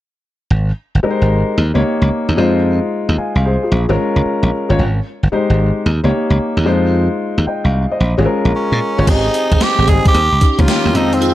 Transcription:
0.50 G#1
0.95 G1
1.03 G#3 D#4 G4 A#4, muted slap bass stroke
1.11 C5
1.22 G#1
1.58 D#2
1.74 C#2 A#3 D#4 G4 C#5
2.02 C#2
2.11 muted slap bass stroke
2.29 D#2
2.37 F2 G#3 D#4 F4 C5
3.09 D#2
3.18 F5 G#5, muted slap bass stroke
3.35 C2 F5
3.45 G#4 C5
3.63 F4 G#4
3.72 A#1
3.89 G#1 G#3 C#4 F4 A#4
4.16 C#2
4.43 A#1
4.69 G1 G#3 C#4 F4 C#5
4.79 G#1
5.23 G1
5.32 G#3 D#4 G4 C5
5.50 G#1
5.86 D#2
6.04 C#2 A#3 D#4 G4 C#5
6.30 C#2
6.39 muted slap bass stroke
6.57 D#2
6.65 F2 G#3 D#4 F4 C5
7.38 D#2
7.47 D#5 G5, muted slap bass stroke
7.64 C2 F5
7.92 C5 D#5
8.00 A#1
8.18 G#1 G#3 C#4 F4 G#4
8.25 A#4
8.45 A#1
8.56 C#4
8.72 A#2
8.98 G1 G#3 C#4 F4 C#5
9.07 G#1 C4 D#4 G4 G#4, kick, closed hi-hat, crash
9.34 closed hi-hat
9.52 G1 C4 G4 G#4, kick, closed hi-hat
9.61 G4, muted slap bass stroke, snare, closed hi-hat
9.78 G#1 C4 G4 G#4
9.87 G3 C4 D#4 G#4, kick, closed hi-hat
10.05 G4, kick, closed hi-hat
10.14 D#2, closed hi-hat
10.32 C#2
10.41 C#4 D#4 G4, kick, closed hi-hat
10.51 G4
10.58 C#2 D#3 A#3 C#4 F4 G4, kick, closed hi-hat
10.68 muted slap bass stroke, snare, closed hi-hat
10.85 D#2
10.94 F2 D#3 G#3 C4 D#4 F4, closed hi-hat
11.13 C4, closed hi-hat
11.21 D#4 F4 G#4, closed hi-hat

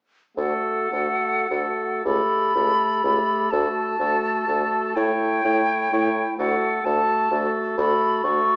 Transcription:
0.37 D2 A3 F#4 A4 F#5
0.91 D2 A3 F#4 A4
1.49 D2 A3 F#4 A4
2.04 C#2 A3 G4 A4 B5
2.55 C#2 A3 G4 A4
3.04 C#2 A3 G4 A4
3.51 D2 A3 F#4 A4 A5
3.99 D2 A3 F#4 A4
4.47 D2 A3 F#4 A4
4.96 A2 A3 E4 C#5 G5
5.44 A2 A3 E4 C#5
5.92 A2 A3 E4 C#5
6.38 D2 A3 F#4 A4 F#5
6.84 D2 A3 F#4 A4 A5
7.31 D2 A3 F#4 A4
7.78 D2 A3 F#4 A4 B5
8.24 D2 A3 F#4 A4 C#6

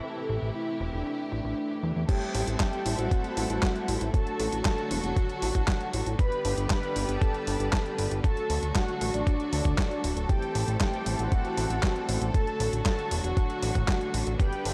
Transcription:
Already playing: C3 E3 A3 E4
0.03 G4 A4, closed hi-hat
0.17 closed hi-hat
0.29 A1, closed hi-hat
0.42 A1, closed hi-hat
0.55 E4, closed hi-hat
0.68 closed hi-hat
0.81 E1, closed hi-hat
0.93 E1 D4, closed hi-hat
1.06 closed hi-hat
1.19 closed hi-hat
1.32 A1, closed hi-hat
1.45 A1, closed hi-hat
1.58 closed hi-hat
1.70 closed hi-hat
1.83 E2, closed hi-hat
1.96 E2, closed hi-hat
2.09 G3 A3 C4 E4 G4 A4 G5, kick, closed hi-hat, crash
2.22 closed hi-hat
2.34 A1, open hi-hat
2.47 A1, closed hi-hat
2.60 G4 G5, kick, snare, clap, closed hi-hat
2.73 closed hi-hat
2.86 A1, open hi-hat
2.98 A1 F#4 F#5, closed hi-hat
3.11 kick, closed hi-hat
3.24 closed hi-hat
3.37 A1, open hi-hat
3.50 A1, closed hi-hat
3.63 kick, snare, clap, closed hi-hat
3.76 closed hi-hat
3.88 A1, open hi-hat
4.01 A1, closed hi-hat
4.14 D3 F#3 F#4 A4 A5, kick, closed hi-hat
4.27 closed hi-hat
4.40 A1, open hi-hat
4.52 A1, closed hi-hat
4.65 A4 A5, kick, snare, clap, closed hi-hat
4.78 closed hi-hat
4.91 E1, open hi-hat
5.04 E1 F#4 F#5, closed hi-hat
5.17 kick, closed hi-hat
5.29 closed hi-hat
5.42 A1, open hi-hat
5.55 A1, kick, closed hi-hat
5.68 kick, snare, clap, closed hi-hat
5.81 closed hi-hat
5.93 A1, open hi-hat
6.06 A1, closed hi-hat
6.19 G3 B3 G4 B4 B5, kick, closed hi-hat
6.32 closed hi-hat
6.45 G1, open hi-hat
6.58 G1, closed hi-hat
6.70 B4 B5, kick, snare, clap, closed hi-hat
6.83 closed hi-hat
6.96 G1, open hi-hat
7.09 G1 A4 A5, closed hi-hat
7.22 kick, closed hi-hat
7.35 closed hi-hat
7.47 G1, open hi-hat
7.60 G1, closed hi-hat
7.73 kick, snare, clap, closed hi-hat
7.86 closed hi-hat
7.99 G1, open hi-hat
8.11 G1, closed hi-hat
8.24 F#3 A3 F#4 A4 A5, kick, closed hi-hat
8.37 closed hi-hat
8.50 D2, open hi-hat
8.63 D2, closed hi-hat
8.75 F#4 F#5, kick, snare, clap, closed hi-hat
8.88 closed hi-hat
9.01 A1, open hi-hat
9.14 A1 D4 D5, closed hi-hat
9.27 kick, closed hi-hat
9.40 closed hi-hat
9.53 D2, open hi-hat
9.65 D2, kick, closed hi-hat
9.78 kick, snare, clap, closed hi-hat
9.91 closed hi-hat
10.04 D1, open hi-hat
10.16 D1, closed hi-hat
10.29 E3 G3 C4 G4 G5, kick, closed hi-hat
10.42 closed hi-hat
10.55 A1, open hi-hat
10.68 A1, closed hi-hat
10.81 G4 G5, kick, snare, clap, closed hi-hat
10.93 closed hi-hat
11.06 A1, open hi-hat
11.19 A1 F#4 F#5, closed hi-hat
11.32 kick, closed hi-hat
11.45 closed hi-hat
11.57 A1, open hi-hat
11.70 A1, closed hi-hat
11.83 kick, snare, clap, closed hi-hat
11.96 closed hi-hat
12.09 A1, open hi-hat
12.22 A1, closed hi-hat
12.34 D3 F#3 F#4 A4 A5, kick, closed hi-hat
12.47 closed hi-hat
12.60 A1, open hi-hat
12.73 A1, closed hi-hat
12.86 A4 A5, kick, snare, clap, closed hi-hat
12.99 closed hi-hat
13.11 E1, open hi-hat
13.24 E1 F#4 F#5, closed hi-hat
13.37 kick, closed hi-hat
13.50 closed hi-hat
13.63 A1, open hi-hat
13.75 A1, kick, closed hi-hat
13.88 kick, snare, clap, closed hi-hat
14.01 closed hi-hat
14.14 A1, open hi-hat
14.27 A1, closed hi-hat
14.39 G3 B3 D4 G4 B4 G5, kick, closed hi-hat
14.53 closed hi-hat
14.65 G1, open hi-hat

